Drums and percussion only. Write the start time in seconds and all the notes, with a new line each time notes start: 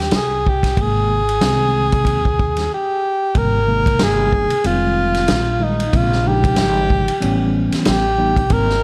0.11 snare, hi-hat pedal, ride
0.46 kick
0.63 kick, snare, ride
0.77 kick, ride
1.29 ride
1.41 snare, hi-hat pedal, ride
1.92 kick, ride
2.05 kick, ride
2.25 kick
2.39 kick
2.56 snare, ride
3.35 kick, ride
3.86 kick, ride
3.99 snare, hi-hat pedal, ride
4.33 kick
4.50 ride
4.64 ride
5.14 snare, ride
5.28 snare, hi-hat pedal, ride
5.80 ride
5.93 kick, ride
6.12 snare
6.44 kick, ride
6.56 snare, hi-hat pedal, ride
6.90 kick
7.08 ride
7.22 ride
7.72 snare, ride
7.85 snare, hi-hat pedal, ride
8.37 kick, ride
8.50 kick, ride
8.69 snare